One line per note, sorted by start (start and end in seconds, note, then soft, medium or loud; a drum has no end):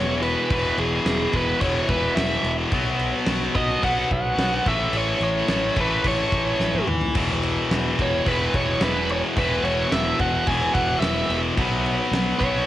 0.00 0.35 E1 loud
0.00 0.48 E2 medium
0.00 0.49 E2 medium
0.00 0.49 B2 medium
0.00 0.48 E3 medium
0.00 0.50 E3 medium
0.00 0.22 C#5 medium
0.23 0.50 B4 medium
0.23 crash medium
0.49 0.71 E1 loud
0.49 1.31 E2 medium
0.49 1.32 B2 loud
0.49 1.32 E3 loud
0.49 0.79 B4 medium
0.49 kick loud
0.49 crash medium
0.78 0.98 E1 medium
0.78 1.36 G#4 medium
0.78 crash medium
1.05 1.26 E1 loud
1.05 snare loud
1.05 crash medium
1.33 1.54 E1 medium
1.33 2.72 E2 medium
1.33 2.70 B2 medium
1.33 2.70 E3 medium
1.33 1.61 B4 medium
1.33 kick medium
1.33 crash medium
1.61 1.81 E1 medium
1.61 2.71 E2 medium
1.61 2.71 B2 medium
1.61 2.72 E3 medium
1.61 1.89 C#5 loud
1.61 kick medium
1.61 crash medium
1.88 2.09 E1 medium
1.88 2.18 B4 medium
1.88 kick medium
1.88 crash medium
2.15 2.37 E1 loud
2.15 2.55 E5 loud
2.15 snare loud
2.15 crash loud
2.44 2.64 E1 medium
2.44 crash medium
2.72 3.12 B1 loud
2.72 3.53 B2 loud
2.72 3.54 F#3 medium
2.72 3.53 B3 loud
2.72 kick loud
2.72 crash medium
3.00 crash medium
3.27 3.47 B1 medium
3.27 snare loud
3.27 crash medium
3.55 3.76 B1 loud
3.55 4.65 B2 medium
3.55 4.65 F#3 medium
3.55 4.64 B3 loud
3.55 3.84 D#5 loud
3.55 kick medium
3.55 crash medium
3.69 snare soft
3.83 4.03 B1 medium
3.83 4.64 B2 medium
3.83 4.65 F#3 medium
3.83 4.66 B3 loud
3.83 4.11 F#5 loud
3.83 kick medium
3.83 crash medium
4.10 4.31 B1 medium
4.10 4.68 F#5 loud
4.10 kick medium
4.10 crash medium
4.38 4.58 B1 loud
4.38 snare loud
4.38 crash medium
4.65 4.86 A1 medium
4.65 5.47 A2 medium
4.65 5.50 E3 loud
4.65 5.48 A3 loud
4.65 4.96 E5 loud
4.65 kick loud
4.65 crash medium
4.93 5.13 A1 loud
4.93 crash medium
4.97 5.21 C#5 medium
5.20 5.41 A1 loud
5.20 5.80 C#5 loud
5.20 crash medium
5.48 5.69 A1 medium
5.48 6.86 A2 medium
5.48 7.17 E3 medium
5.48 6.87 A3 medium
5.48 snare loud
5.48 crash medium
5.76 5.97 A1 medium
5.76 6.87 A2 medium
5.76 7.17 E3 medium
5.76 6.86 A3 medium
5.76 kick medium
5.76 crash medium
5.81 6.07 B4 medium
6.04 6.24 A1 loud
6.04 6.85 C#5 medium
6.04 kick medium
6.04 crash medium
6.32 6.52 A1 medium
6.32 kick medium
6.32 crash medium
6.59 6.80 A1 medium
6.59 snare medium
6.74 high tom medium
6.87 7.08 D#2 medium
6.87 mid tom medium
7.01 floor tom medium
7.14 7.55 E1 medium
7.14 8.00 E2 medium
7.14 7.97 B2 medium
7.14 7.97 E3 medium
7.14 kick loud
7.14 crash loud
7.43 crash medium
7.71 7.91 E1 medium
7.71 snare loud
7.71 crash medium
7.97 8.19 E1 medium
7.97 9.35 E2 medium
7.97 9.35 B2 medium
7.97 9.34 E3 medium
7.97 kick medium
7.97 crash medium
8.02 8.27 C#5 medium
8.26 8.46 E1 medium
8.26 9.35 E2 medium
8.26 9.36 B2 medium
8.26 9.36 E3 medium
8.26 8.52 B4 medium
8.26 kick medium
8.26 crash medium
8.54 8.74 E1 medium
8.54 8.82 C#5 medium
8.54 kick medium
8.54 crash medium
8.80 9.21 E1 medium
8.80 9.34 E2 medium
8.80 9.35 B2 medium
8.80 9.35 E3 medium
8.80 9.10 B4 medium
8.80 snare loud
8.80 crash medium
9.09 9.19 C#5 medium
9.09 crash medium
9.36 9.57 E1 loud
9.36 10.17 E2 medium
9.36 10.18 B2 loud
9.36 10.18 E3 loud
9.36 9.64 B4 medium
9.36 kick loud
9.36 crash medium
9.63 9.83 E1 loud
9.63 9.93 C#5 medium
9.63 crash medium
9.91 10.12 E1 medium
9.91 10.20 E5 medium
9.91 snare loud
9.91 crash medium
10.19 10.39 E1 medium
10.19 11.57 E2 medium
10.19 11.55 B2 medium
10.19 11.55 E3 medium
10.19 10.48 F#5 loud
10.19 kick medium
10.19 crash medium
10.47 10.67 E1 loud
10.47 11.56 E2 medium
10.47 11.57 B2 medium
10.47 11.57 E3 medium
10.47 10.72 G#5 loud
10.47 kick medium
10.47 crash medium
10.74 10.94 E1 medium
10.74 11.00 F#5 loud
10.74 kick loud
10.74 crash medium
11.00 11.21 E1 medium
11.00 11.55 E2 medium
11.00 11.55 B2 medium
11.00 11.56 E3 medium
11.00 11.39 E5 loud
11.00 snare loud
11.00 crash medium
11.29 11.49 E1 medium
11.29 crash medium
11.57 11.97 B1 loud
11.57 12.38 B2 loud
11.57 12.38 F#3 medium
11.57 12.37 B3 medium
11.57 kick loud
11.57 crash medium
11.86 crash medium
12.11 12.32 B1 loud
12.11 snare loud
12.11 crash medium
12.38 12.60 B1 loud
12.38 12.66 B2 medium
12.38 12.66 F#3 medium
12.38 12.66 B3 medium
12.38 12.66 C#5 medium
12.38 kick medium
12.38 crash medium
12.55 snare soft